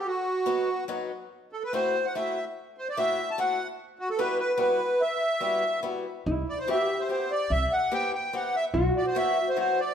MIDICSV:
0, 0, Header, 1, 5, 480
1, 0, Start_track
1, 0, Key_signature, 1, "minor"
1, 0, Tempo, 413793
1, 66, Time_signature, 3, 2, 24, 8
1, 11532, End_track
2, 0, Start_track
2, 0, Title_t, "Accordion"
2, 0, Program_c, 0, 21
2, 67, Note_on_c, 0, 66, 76
2, 978, Note_off_c, 0, 66, 0
2, 1770, Note_on_c, 0, 69, 75
2, 1890, Note_off_c, 0, 69, 0
2, 1898, Note_on_c, 0, 71, 68
2, 2002, Note_off_c, 0, 71, 0
2, 2015, Note_on_c, 0, 72, 86
2, 2385, Note_on_c, 0, 78, 77
2, 2389, Note_off_c, 0, 72, 0
2, 2489, Note_off_c, 0, 78, 0
2, 2501, Note_on_c, 0, 76, 72
2, 2836, Note_off_c, 0, 76, 0
2, 3221, Note_on_c, 0, 72, 73
2, 3338, Note_off_c, 0, 72, 0
2, 3356, Note_on_c, 0, 74, 76
2, 3456, Note_on_c, 0, 76, 101
2, 3463, Note_off_c, 0, 74, 0
2, 3820, Note_off_c, 0, 76, 0
2, 3834, Note_on_c, 0, 81, 88
2, 3937, Note_off_c, 0, 81, 0
2, 3943, Note_on_c, 0, 78, 82
2, 4261, Note_off_c, 0, 78, 0
2, 4629, Note_on_c, 0, 66, 76
2, 4744, Note_off_c, 0, 66, 0
2, 4758, Note_on_c, 0, 69, 81
2, 4855, Note_on_c, 0, 71, 84
2, 4866, Note_off_c, 0, 69, 0
2, 5075, Note_off_c, 0, 71, 0
2, 5092, Note_on_c, 0, 71, 87
2, 5312, Note_off_c, 0, 71, 0
2, 5330, Note_on_c, 0, 71, 79
2, 5813, Note_on_c, 0, 76, 96
2, 5815, Note_off_c, 0, 71, 0
2, 6729, Note_off_c, 0, 76, 0
2, 7528, Note_on_c, 0, 74, 82
2, 7640, Note_off_c, 0, 74, 0
2, 7643, Note_on_c, 0, 72, 78
2, 7756, Note_off_c, 0, 72, 0
2, 7772, Note_on_c, 0, 76, 97
2, 8123, Note_on_c, 0, 72, 76
2, 8133, Note_off_c, 0, 76, 0
2, 8219, Note_off_c, 0, 72, 0
2, 8237, Note_on_c, 0, 72, 79
2, 8485, Note_off_c, 0, 72, 0
2, 8485, Note_on_c, 0, 74, 101
2, 8712, Note_on_c, 0, 76, 108
2, 8719, Note_off_c, 0, 74, 0
2, 8961, Note_on_c, 0, 78, 91
2, 8962, Note_off_c, 0, 76, 0
2, 9194, Note_on_c, 0, 79, 99
2, 9197, Note_off_c, 0, 78, 0
2, 9418, Note_off_c, 0, 79, 0
2, 9452, Note_on_c, 0, 79, 81
2, 9680, Note_off_c, 0, 79, 0
2, 9688, Note_on_c, 0, 78, 80
2, 9927, Note_off_c, 0, 78, 0
2, 9930, Note_on_c, 0, 76, 105
2, 10030, Note_off_c, 0, 76, 0
2, 10404, Note_on_c, 0, 74, 91
2, 10506, Note_off_c, 0, 74, 0
2, 10520, Note_on_c, 0, 72, 73
2, 10635, Note_off_c, 0, 72, 0
2, 10638, Note_on_c, 0, 76, 101
2, 11007, Note_off_c, 0, 76, 0
2, 11007, Note_on_c, 0, 72, 79
2, 11107, Note_off_c, 0, 72, 0
2, 11124, Note_on_c, 0, 72, 85
2, 11366, Note_on_c, 0, 74, 89
2, 11369, Note_off_c, 0, 72, 0
2, 11532, Note_off_c, 0, 74, 0
2, 11532, End_track
3, 0, Start_track
3, 0, Title_t, "Hollow-body jazz guitar"
3, 0, Program_c, 1, 26
3, 7271, Note_on_c, 1, 64, 75
3, 7756, Note_off_c, 1, 64, 0
3, 7761, Note_on_c, 1, 67, 73
3, 9315, Note_off_c, 1, 67, 0
3, 9315, Note_on_c, 1, 66, 73
3, 10136, Note_off_c, 1, 66, 0
3, 10136, Note_on_c, 1, 66, 107
3, 11532, Note_off_c, 1, 66, 0
3, 11532, End_track
4, 0, Start_track
4, 0, Title_t, "Steel-string acoustic guitar"
4, 0, Program_c, 2, 25
4, 530, Note_on_c, 2, 54, 47
4, 534, Note_on_c, 2, 59, 55
4, 541, Note_on_c, 2, 66, 56
4, 544, Note_on_c, 2, 63, 47
4, 782, Note_off_c, 2, 54, 0
4, 784, Note_off_c, 2, 66, 0
4, 785, Note_off_c, 2, 59, 0
4, 786, Note_off_c, 2, 63, 0
4, 1021, Note_on_c, 2, 54, 48
4, 1027, Note_on_c, 2, 63, 54
4, 1031, Note_on_c, 2, 59, 46
4, 1033, Note_on_c, 2, 66, 59
4, 1275, Note_off_c, 2, 54, 0
4, 1277, Note_off_c, 2, 59, 0
4, 1279, Note_off_c, 2, 63, 0
4, 1279, Note_off_c, 2, 66, 0
4, 2006, Note_on_c, 2, 57, 61
4, 2016, Note_on_c, 2, 66, 62
4, 2017, Note_on_c, 2, 60, 47
4, 2020, Note_on_c, 2, 64, 44
4, 2258, Note_off_c, 2, 57, 0
4, 2258, Note_off_c, 2, 64, 0
4, 2260, Note_off_c, 2, 60, 0
4, 2260, Note_off_c, 2, 66, 0
4, 2497, Note_on_c, 2, 57, 47
4, 2504, Note_on_c, 2, 66, 52
4, 2506, Note_on_c, 2, 60, 42
4, 2512, Note_on_c, 2, 64, 42
4, 2743, Note_off_c, 2, 57, 0
4, 2744, Note_off_c, 2, 60, 0
4, 2746, Note_off_c, 2, 66, 0
4, 2747, Note_off_c, 2, 64, 0
4, 3449, Note_on_c, 2, 57, 57
4, 3452, Note_on_c, 2, 60, 58
4, 3457, Note_on_c, 2, 66, 63
4, 3469, Note_on_c, 2, 64, 53
4, 3691, Note_off_c, 2, 57, 0
4, 3694, Note_off_c, 2, 66, 0
4, 3695, Note_off_c, 2, 60, 0
4, 3696, Note_off_c, 2, 64, 0
4, 3921, Note_on_c, 2, 57, 51
4, 3926, Note_on_c, 2, 60, 36
4, 3929, Note_on_c, 2, 66, 60
4, 3936, Note_on_c, 2, 64, 34
4, 4161, Note_off_c, 2, 57, 0
4, 4161, Note_off_c, 2, 60, 0
4, 4165, Note_off_c, 2, 64, 0
4, 4166, Note_off_c, 2, 66, 0
4, 4857, Note_on_c, 2, 59, 62
4, 4862, Note_on_c, 2, 55, 70
4, 4865, Note_on_c, 2, 66, 62
4, 4873, Note_on_c, 2, 64, 47
4, 5097, Note_off_c, 2, 59, 0
4, 5100, Note_off_c, 2, 66, 0
4, 5101, Note_off_c, 2, 55, 0
4, 5101, Note_off_c, 2, 64, 0
4, 5308, Note_on_c, 2, 55, 57
4, 5309, Note_on_c, 2, 59, 45
4, 5318, Note_on_c, 2, 66, 58
4, 5325, Note_on_c, 2, 64, 45
4, 5559, Note_off_c, 2, 55, 0
4, 5562, Note_off_c, 2, 59, 0
4, 5563, Note_off_c, 2, 64, 0
4, 5563, Note_off_c, 2, 66, 0
4, 6267, Note_on_c, 2, 59, 48
4, 6273, Note_on_c, 2, 55, 60
4, 6279, Note_on_c, 2, 66, 59
4, 6281, Note_on_c, 2, 64, 46
4, 6524, Note_off_c, 2, 64, 0
4, 6525, Note_off_c, 2, 55, 0
4, 6525, Note_off_c, 2, 59, 0
4, 6525, Note_off_c, 2, 66, 0
4, 6759, Note_on_c, 2, 59, 49
4, 6761, Note_on_c, 2, 55, 54
4, 6768, Note_on_c, 2, 66, 45
4, 6773, Note_on_c, 2, 64, 32
4, 7015, Note_off_c, 2, 55, 0
4, 7017, Note_off_c, 2, 59, 0
4, 7021, Note_off_c, 2, 64, 0
4, 7023, Note_off_c, 2, 66, 0
4, 7743, Note_on_c, 2, 60, 53
4, 7747, Note_on_c, 2, 59, 50
4, 7751, Note_on_c, 2, 67, 62
4, 7754, Note_on_c, 2, 64, 46
4, 7991, Note_off_c, 2, 59, 0
4, 7992, Note_off_c, 2, 60, 0
4, 7992, Note_off_c, 2, 64, 0
4, 7995, Note_off_c, 2, 67, 0
4, 8222, Note_on_c, 2, 60, 40
4, 8229, Note_on_c, 2, 67, 54
4, 8238, Note_on_c, 2, 59, 41
4, 8243, Note_on_c, 2, 64, 43
4, 8473, Note_off_c, 2, 60, 0
4, 8474, Note_off_c, 2, 59, 0
4, 8474, Note_off_c, 2, 64, 0
4, 8474, Note_off_c, 2, 67, 0
4, 9182, Note_on_c, 2, 67, 78
4, 9187, Note_on_c, 2, 59, 57
4, 9191, Note_on_c, 2, 60, 46
4, 9196, Note_on_c, 2, 64, 49
4, 9431, Note_off_c, 2, 59, 0
4, 9431, Note_off_c, 2, 64, 0
4, 9431, Note_off_c, 2, 67, 0
4, 9434, Note_off_c, 2, 60, 0
4, 9666, Note_on_c, 2, 59, 49
4, 9666, Note_on_c, 2, 60, 41
4, 9673, Note_on_c, 2, 67, 52
4, 9685, Note_on_c, 2, 64, 42
4, 9909, Note_off_c, 2, 59, 0
4, 9912, Note_off_c, 2, 60, 0
4, 9912, Note_off_c, 2, 67, 0
4, 9913, Note_off_c, 2, 64, 0
4, 10612, Note_on_c, 2, 54, 58
4, 10622, Note_on_c, 2, 59, 49
4, 10627, Note_on_c, 2, 66, 72
4, 10628, Note_on_c, 2, 64, 51
4, 10868, Note_off_c, 2, 54, 0
4, 10869, Note_off_c, 2, 59, 0
4, 10870, Note_off_c, 2, 64, 0
4, 10873, Note_off_c, 2, 66, 0
4, 11093, Note_on_c, 2, 64, 44
4, 11095, Note_on_c, 2, 54, 50
4, 11100, Note_on_c, 2, 66, 53
4, 11111, Note_on_c, 2, 59, 41
4, 11346, Note_off_c, 2, 64, 0
4, 11349, Note_off_c, 2, 66, 0
4, 11350, Note_off_c, 2, 54, 0
4, 11350, Note_off_c, 2, 59, 0
4, 11532, End_track
5, 0, Start_track
5, 0, Title_t, "Upright bass"
5, 0, Program_c, 3, 32
5, 7266, Note_on_c, 3, 36, 100
5, 7426, Note_off_c, 3, 36, 0
5, 8704, Note_on_c, 3, 36, 95
5, 8864, Note_off_c, 3, 36, 0
5, 10135, Note_on_c, 3, 35, 99
5, 10298, Note_off_c, 3, 35, 0
5, 11532, End_track
0, 0, End_of_file